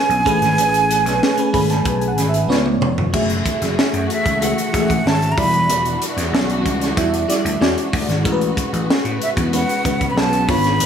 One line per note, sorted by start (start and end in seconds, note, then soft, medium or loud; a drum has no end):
0.00 0.28 G3 medium
0.00 0.28 G#3 medium
0.00 0.28 D4 medium
0.00 0.28 E4 medium
0.00 0.26 B4 medium
0.00 2.46 G#5 loud
0.09 0.23 B1 medium
0.09 closed hi-hat soft
0.25 0.43 A1 loud
0.25 1.15 A3 medium
0.25 1.15 C#4 medium
0.25 1.16 G#4 medium
0.25 1.16 B4 medium
0.25 kick loud
0.25 closed hi-hat medium
0.41 0.58 G#1 medium
0.41 snare soft
0.41 closed hi-hat soft
0.58 1.05 A1 medium
0.58 closed hi-hat medium
0.74 closed hi-hat medium
0.91 closed hi-hat medium
1.05 1.19 B1 medium
1.05 snare soft
1.05 closed hi-hat medium
1.23 snare loud
1.37 1.50 A3 medium
1.37 1.51 C#4 medium
1.37 1.51 G#4 medium
1.37 1.51 B4 medium
1.37 closed hi-hat soft
1.53 1.80 G#1 medium
1.53 2.50 A3 medium
1.53 2.50 C#4 medium
1.53 2.50 G#4 medium
1.53 2.50 B4 medium
1.53 1.69 B5 medium
1.53 kick medium
1.53 open hi-hat medium
1.70 1.85 A5 medium
1.70 snare soft
1.70 closed hi-hat soft
1.85 2.12 B1 medium
1.85 2.06 G#5 medium
1.85 kick medium
1.85 closed hi-hat medium
2.01 closed hi-hat soft
2.08 2.28 F#5 medium
2.17 2.49 G#1 medium
2.17 snare soft
2.17 closed hi-hat medium
2.29 2.49 E5 medium
2.34 closed hi-hat soft
2.48 2.76 C#2 loud
2.48 3.01 B3 medium
2.48 3.01 D4 medium
2.48 3.01 F4 medium
2.48 2.80 C#5 medium
2.48 2.79 D5 medium
2.48 snare medium
2.66 high tom medium
2.81 3.08 F1 medium
2.81 3.11 C#5 medium
2.81 mid tom medium
2.98 floor tom medium
3.13 3.40 F#1 medium
3.13 8.21 E3 medium
3.13 4.14 A3 medium
3.13 5.35 A3 medium
3.13 4.15 F#4 medium
3.13 5.35 F#4 medium
3.13 4.15 G#4 medium
3.13 5.36 G#4 medium
3.13 4.15 E5 medium
3.13 kick loud
3.13 crash medium
3.30 closed hi-hat soft
3.46 kick medium
3.46 closed hi-hat medium
3.61 3.75 F#1 medium
3.61 snare soft
3.61 closed hi-hat soft
3.77 muted slap bass stroke soft
3.77 snare loud
3.93 4.07 F#2 medium
3.93 closed hi-hat soft
4.10 4.44 E5 medium
4.10 closed hi-hat medium
4.25 4.52 C#2 medium
4.25 kick medium
4.25 closed hi-hat soft
4.41 4.67 A3 medium
4.41 4.67 F#4 medium
4.41 4.67 G#4 medium
4.41 4.68 E5 medium
4.41 5.09 F#5 medium
4.41 closed hi-hat medium
4.58 closed hi-hat soft
4.73 5.00 A1 medium
4.73 4.80 G#3 medium
4.73 5.36 F#4 medium
4.73 5.38 G#4 medium
4.73 5.38 E5 medium
4.73 kick medium
4.73 snare soft
4.73 closed hi-hat medium
4.79 5.40 A3 medium
4.90 kick medium
4.90 closed hi-hat soft
5.05 5.31 G#1 medium
5.05 5.33 A5 medium
5.05 snare medium
5.22 closed hi-hat soft
5.32 5.40 A#5 medium
5.37 5.64 E1 medium
5.37 6.40 G3 medium
5.37 7.60 G3 medium
5.37 8.22 D4 medium
5.37 6.40 E4 medium
5.37 6.40 F#4 medium
5.37 7.59 F#4 medium
5.37 6.40 D5 medium
5.37 6.02 B5 loud
5.37 kick loud
5.37 open hi-hat medium
5.54 closed hi-hat medium
5.69 5.95 E1 loud
5.69 closed hi-hat loud
5.85 closed hi-hat soft
6.02 closed hi-hat medium
6.17 6.30 E2 loud
6.17 snare soft
6.17 closed hi-hat medium
6.33 6.65 B1 medium
6.33 snare loud
6.50 closed hi-hat soft
6.65 6.91 C#2 medium
6.65 kick medium
6.65 closed hi-hat medium
6.82 snare soft
6.82 closed hi-hat medium
6.97 7.23 E2 medium
6.97 7.22 G3 medium
6.97 7.23 E4 medium
6.97 7.23 F#4 medium
6.97 7.23 E5 medium
6.97 kick medium
6.97 closed hi-hat medium
7.14 closed hi-hat soft
7.28 7.61 G3 medium
7.28 7.60 E4 medium
7.28 7.60 F#4 medium
7.28 7.60 D5 medium
7.28 snare soft
7.28 closed hi-hat medium
7.45 7.58 D2 medium
7.45 closed hi-hat medium
7.60 7.74 E2 medium
7.60 8.12 G#3 medium
7.60 10.46 G#3 medium
7.60 8.12 E4 medium
7.60 8.12 F#4 medium
7.60 10.46 F#4 medium
7.60 8.13 D5 medium
7.60 snare medium
7.78 closed hi-hat soft
7.93 8.06 D2 medium
7.93 kick medium
7.93 open hi-hat medium
8.08 8.22 G#1 medium
8.08 snare soft
8.08 closed hi-hat soft
8.24 8.51 A1 loud
8.24 10.47 C#3 medium
8.24 9.26 G#3 medium
8.24 10.86 B3 medium
8.24 9.26 C#4 medium
8.24 9.26 F#4 medium
8.24 8.32 A#4 medium
8.24 kick loud
8.24 closed hi-hat medium
8.32 9.30 B4 medium
8.41 closed hi-hat medium
8.57 kick medium
8.57 closed hi-hat medium
8.73 8.86 A1 medium
8.73 closed hi-hat medium
8.88 muted slap bass stroke soft
8.88 snare loud
9.04 9.18 A2 medium
9.04 closed hi-hat medium
9.22 9.30 E5 medium
9.22 closed hi-hat medium
9.37 9.63 E2 medium
9.37 kick medium
9.37 closed hi-hat soft
9.53 9.78 G#3 medium
9.53 9.78 C#4 medium
9.53 9.78 F#4 medium
9.53 9.79 B4 medium
9.53 10.07 F#5 medium
9.53 closed hi-hat medium
9.69 closed hi-hat soft
9.84 10.11 C#2 medium
9.84 10.49 G#3 medium
9.84 10.49 C#4 medium
9.84 10.49 F#4 medium
9.84 10.49 B4 medium
9.84 kick medium
9.84 closed hi-hat medium
10.01 kick medium
10.01 closed hi-hat soft
10.10 10.20 B5 medium
10.16 10.50 B1 medium
10.16 10.52 A5 loud
10.16 snare medium
10.33 closed hi-hat soft
10.48 10.75 G#1 loud
10.48 10.86 C#3 medium
10.48 10.86 D3 medium
10.48 10.86 B3 medium
10.48 10.86 D4 medium
10.48 10.86 F4 medium
10.48 10.86 C#5 medium
10.48 10.86 B5 loud
10.48 kick loud
10.48 open hi-hat medium
10.64 snare soft
10.64 closed hi-hat soft
10.80 10.86 G#1 medium
10.80 closed hi-hat loud